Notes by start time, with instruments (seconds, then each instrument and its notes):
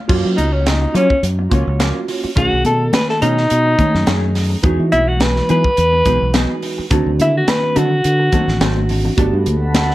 0.08 fingered electric bass F#2, clean electric guitar F3 A#3 C#4 F4, tine electric piano A#3 C#4 F4 F#4, kick, crash
0.25 fingered electric bass F#3
0.36 fingered electric bass C#2, alto saxophone D#4, muted clean electric guitar stroke, closed hi-hat, high conga
0.53 alto saxophone C#4
0.65 alto saxophone D#4, muted clean electric guitar stroke, snare, closed hi-hat, high conga
0.82 muted clean electric guitar stroke
0.94 clean electric guitar F3 A#3 C#4 F4, fingered electric bass F#3, alto saxophone C#4, closed hi-hat, muted conga
1.10 muted clean electric guitar stroke, kick
1.23 fingered electric bass F#2, closed hi-hat, muted conga
1.39 muted clean electric guitar stroke
1.50 fingered electric bass C#2, clean electric guitar F3 A#3 C#4 F4, tine electric piano A#3 C#4 F4 F#4, kick, closed hi-hat, muted conga
1.66 fingered electric bass C#2, muted clean electric guitar stroke
1.79 clean electric guitar F3 A#3 C#4 F4, snare, closed hi-hat, high conga
2.08 muted clean electric guitar stroke, open hi-hat
2.24 muted clean electric guitar stroke, muted fingered electric bass stroke
2.36 fingered electric bass B1, clean electric guitar D#3 A3 C#4 G#4, tine electric piano D#3 A3 C#4 G#4, alto saxophone F#4, kick, closed hi-hat, muted conga
2.53 fingered electric bass B1
2.64 fingered electric bass B2, alto saxophone A4, muted clean electric guitar stroke, closed hi-hat, high conga
2.93 alto saxophone B4, muted clean electric guitar stroke, snare, closed hi-hat, high conga
3.09 alto saxophone A4, muted clean electric guitar stroke, snare
3.21 fingered electric bass B2, clean electric guitar D#3 A3 C#4 G#4, alto saxophone D#4, closed hi-hat, muted conga
3.38 muted clean electric guitar stroke, snare
3.50 fingered electric bass B2, closed hi-hat, muted conga
3.66 muted clean electric guitar stroke
3.78 tine electric piano D#3 A3 C#4 G#4, clean electric guitar D#3 A3 C#4 G#4, kick, closed hi-hat, muted conga, high conga
3.94 fingered electric bass F#2, muted clean electric guitar stroke, snare
4.06 fingered electric bass F#2, clean electric guitar D#3 A3 C#4 G#4, snare, closed hi-hat, high conga
4.35 muted clean electric guitar stroke, snare, open hi-hat
4.50 muted clean electric guitar stroke
4.62 fingered electric bass E2, tine electric piano E3 G#3 D#4 F#4, clean electric guitar F#3 B3 D#4 G#4, kick, closed hi-hat, muted conga
4.80 fingered electric bass E3
4.92 fingered electric bass B1, alto saxophone E4, muted clean electric guitar stroke, closed hi-hat, high conga
5.08 alto saxophone F#4
5.20 alto saxophone B4, muted clean electric guitar stroke, snare, closed hi-hat, high conga
5.36 muted clean electric guitar stroke, snare
5.49 fingered electric bass E3, clean electric guitar F#3 B3 D#4 G#4, alto saxophone B4, closed hi-hat
5.64 muted clean electric guitar stroke, kick
5.77 fingered electric bass E2, closed hi-hat, muted conga
5.92 muted clean electric guitar stroke
6.05 fingered electric bass B1, tine electric piano E3 G#3 D#4 F#4, clean electric guitar F#3 B3 D#4 G#4, kick, closed hi-hat
6.20 fingered electric bass B1, muted clean electric guitar stroke
6.34 clean electric guitar F#3 B3 D#4 G#4, snare, closed hi-hat, high conga
6.63 muted clean electric guitar stroke, open hi-hat
6.78 muted clean electric guitar stroke, muted fingered electric bass stroke
6.90 fingered electric bass D2, tine electric piano D#3 C4 D4 F#4, clean electric guitar F#3 C4 D#4 A4, kick, closed hi-hat, muted conga
7.06 fingered electric bass D2
7.19 fingered electric bass D3, alto saxophone E4, muted clean electric guitar stroke, closed hi-hat, high conga
7.37 alto saxophone F#4
7.47 alto saxophone B4, muted clean electric guitar stroke, snare, closed hi-hat, high conga
7.62 muted clean electric guitar stroke
7.76 fingered electric bass D3, clean electric guitar F#3 C4 D#4 A4, alto saxophone F#4, closed hi-hat
7.91 muted clean electric guitar stroke
8.04 fingered electric bass D3, closed hi-hat, muted conga
8.20 muted clean electric guitar stroke
8.32 tine electric piano D#3 C4 D4 F#4, clean electric guitar F#3 C4 D#4 A4, kick, closed hi-hat, muted conga, high conga
8.48 fingered electric bass A1, muted clean electric guitar stroke, snare
8.61 fingered electric bass G#1, clean electric guitar F#3 C4 D#4 A4, snare, closed hi-hat, high conga
8.77 high conga
8.89 muted clean electric guitar stroke, open hi-hat, low conga
9.05 muted clean electric guitar stroke, low conga
9.17 fingered electric bass G1, clean electric guitar F#3 B3 D4 A4, tine electric piano A3 B3 F#4 G4, analog synth pad A4 F#5 A5 B5, kick, closed hi-hat, muted conga
9.33 fingered electric bass G2
9.46 fingered electric bass D2, muted clean electric guitar stroke, closed hi-hat, high conga
9.74 muted clean electric guitar stroke, snare, closed hi-hat, high conga
9.89 muted clean electric guitar stroke, snare